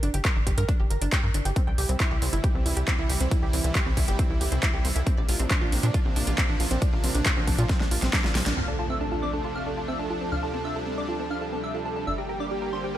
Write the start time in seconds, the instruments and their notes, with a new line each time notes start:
0.03 analog synth bass G1, synth pluck D4, closed hi-hat
0.14 analog synth bass G1, synth pluck G4, closed hi-hat
0.25 synth pluck A#4, kick, clap, closed hi-hat
0.36 analog synth bass G1, synth pluck D4
0.47 analog synth bass G1, synth pluck G4, kick, closed hi-hat
0.58 analog synth bass G2, synth pluck A#4, closed hi-hat
0.69 synth pluck D4, kick, closed hi-hat
0.80 analog synth bass G1, synth pluck G4
0.90 analog synth bass G1, synth pluck A#4, closed hi-hat
1.01 analog synth bass G1, synth pluck D4, closed hi-hat
1.12 synth pluck G4, kick, clap, closed hi-hat
1.23 analog synth bass G2, synth pluck A#4
1.34 analog synth bass G1, synth pluck D4, closed hi-hat
1.45 analog synth bass G1, synth pluck G4, closed hi-hat
1.56 supersaw synth C3 E3 G3 E4, synth pluck C4, kick, closed hi-hat
1.67 analog synth bass C2, synth pluck G5
1.78 analog synth bass C2, synth pluck G4, open hi-hat
1.89 analog synth bass C2, synth pluck C4, closed hi-hat
2.00 synth pluck E4, kick, clap, closed hi-hat
2.11 analog synth bass C2, synth pluck G4
2.22 analog synth bass C2, synth pluck C4, open hi-hat
2.33 analog synth bass G1, synth pluck E4, closed hi-hat
2.44 synth pluck G4, kick, closed hi-hat
2.55 analog synth bass C2, synth pluck C4
2.66 analog synth bass C2, synth pluck E4, open hi-hat
2.77 analog synth bass C2, synth pluck G4, closed hi-hat
2.88 synth pluck C4, kick, clap, closed hi-hat
2.99 analog synth bass C2, synth pluck E4
3.10 analog synth bass C2, synth pluck G4, open hi-hat
3.20 analog synth bass C2, synth pluck C4, closed hi-hat
3.31 synth pluck E4, kick, closed hi-hat
3.42 analog synth bass C2, synth pluck G4
3.53 analog synth bass C2, synth pluck C4, open hi-hat
3.64 analog synth bass C2, synth pluck E4, closed hi-hat
3.75 synth pluck G4, kick, clap, closed hi-hat
3.86 analog synth bass C2, synth pluck C4
3.97 analog synth bass C2, synth pluck E4, kick, open hi-hat
4.08 analog synth bass G1, synth pluck G4, closed hi-hat
4.19 synth pluck C4, kick, closed hi-hat
4.30 analog synth bass C2, synth pluck E4
4.41 analog synth bass C2, synth pluck G4, open hi-hat
4.52 analog synth bass C2, synth pluck C4, closed hi-hat
4.63 synth pluck E4, kick, clap, closed hi-hat
4.74 analog synth bass C2, synth pluck G4
4.85 analog synth bass C2, synth pluck C4, open hi-hat
4.96 analog synth bass C2, synth pluck E4, closed hi-hat
5.06 supersaw synth C3 F3 A#3 D4, synth pluck C4, kick, closed hi-hat
5.17 analog synth bass A#1, synth pluck D5
5.29 analog synth bass A#1, synth pluck F4, open hi-hat
5.39 analog synth bass A#1, synth pluck C4, closed hi-hat
5.50 synth pluck D4, kick, clap, closed hi-hat
5.61 analog synth bass A#1, synth pluck F4
5.72 analog synth bass A#1, synth pluck C4, open hi-hat
5.83 analog synth bass A#2, synth pluck D4, closed hi-hat
5.94 synth pluck F4, kick, closed hi-hat
6.05 analog synth bass A#1, synth pluck C4
6.16 analog synth bass A#1, synth pluck D4, open hi-hat
6.27 analog synth bass A#1, synth pluck F4, closed hi-hat
6.38 synth pluck C4, kick, clap, closed hi-hat
6.49 analog synth bass A#1, synth pluck D4
6.60 analog synth bass A#1, synth pluck F4, open hi-hat
6.71 analog synth bass A#1, synth pluck C4, closed hi-hat
6.82 synth pluck D4, kick, closed hi-hat
6.93 analog synth bass A#1, synth pluck F4
7.04 analog synth bass A#1, synth pluck C4, open hi-hat
7.15 analog synth bass A#1, synth pluck D4, closed hi-hat
7.26 synth pluck F4, kick, clap, closed hi-hat
7.37 analog synth bass A#1, synth pluck C4
7.47 analog synth bass A#1, synth pluck D4, kick, open hi-hat
7.58 analog synth bass A#2, synth pluck F4, closed hi-hat
7.69 synth pluck C4, kick, snare, closed hi-hat
7.80 analog synth bass A#1, synth pluck D4, snare
7.91 analog synth bass A#1, synth pluck F4, open hi-hat
8.02 analog synth bass A#1, synth pluck C4, snare, closed hi-hat
8.13 synth pluck D4, kick, snare, clap, closed hi-hat
8.24 analog synth bass A#1, synth pluck F4, snare
8.35 analog synth bass A#1, synth pluck C4, snare, open hi-hat
8.46 analog synth bass A#1, synth pluck D4, snare, closed hi-hat
8.57 analog synth bass D2, supersaw synth C3 F3 A3 D4 F5, synth pluck C4, digital synth lead F6, impact
8.68 supersaw synth A4, synth pluck D5, digital synth lead A5
8.79 synth pluck F4, supersaw synth A4, digital synth lead A5
8.90 synth pluck C4, supersaw synth E5, digital synth lead E6
9.01 synth pluck D4, supersaw synth A4, digital synth lead A5
9.12 synth pluck F4, supersaw synth A4, digital synth lead A5
9.22 synth pluck C4, supersaw synth D5, digital synth lead D6
9.34 synth pluck D4, supersaw synth A4, digital synth lead A5
9.44 synth pluck F4, supersaw synth A4, digital synth lead A5
9.55 synth pluck C4, supersaw synth F5, digital synth lead F6
9.66 synth pluck D4, supersaw synth A4, digital synth lead A5
9.77 synth pluck F4, supersaw synth A4, digital synth lead A5
9.88 synth pluck C4, supersaw synth E5, digital synth lead E6
9.99 synth pluck D4, supersaw synth A4, digital synth lead A5
10.10 synth pluck F4, supersaw synth A4, digital synth lead A5
10.21 synth pluck C4, supersaw synth A4, digital synth lead A5
10.32 analog synth bass D2, supersaw synth G3 F5, synth pluck D4, digital synth lead F6
10.43 synth pluck F4, supersaw synth A4, digital synth lead A5
10.54 synth pluck C4, supersaw synth A4, digital synth lead A5
10.65 synth pluck D4, supersaw synth E5, digital synth lead E6
10.76 synth pluck F4, supersaw synth A4, digital synth lead A5
10.87 synth pluck C4, supersaw synth A4, digital synth lead A5
10.98 synth pluck D4, supersaw synth D5, digital synth lead D6
11.09 synth pluck F4, supersaw synth A4, digital synth lead A5
11.19 synth pluck C4, supersaw synth A4, digital synth lead A5
11.30 synth pluck D4, supersaw synth F5, digital synth lead F6
11.41 synth pluck F4, supersaw synth A4, digital synth lead A5
11.52 synth pluck C4, supersaw synth A4, digital synth lead A5
11.63 synth pluck D4, supersaw synth E5, digital synth lead E6
11.74 synth pluck F4, supersaw synth A4, digital synth lead A5
11.85 synth pluck C4, supersaw synth A4, digital synth lead A5
11.96 synth pluck D4, supersaw synth A4, digital synth lead A5
12.07 analog synth bass G1, supersaw synth D3 A#3 G4 E5, synth pluck D4, digital synth lead E6
12.18 supersaw synth G4, digital synth lead G5, synth pluck A#5
12.29 supersaw synth G4, synth pluck A#4, digital synth lead G5
12.40 synth pluck D4, supersaw synth D5, digital synth lead D6
12.51 synth pluck G4, supersaw synth G4, digital synth lead G5
12.62 supersaw synth G4, synth pluck A#4, digital synth lead G5
12.73 synth pluck D4, supersaw synth C5, digital synth lead C6
12.84 supersaw synth G4, synth pluck G4, digital synth lead G5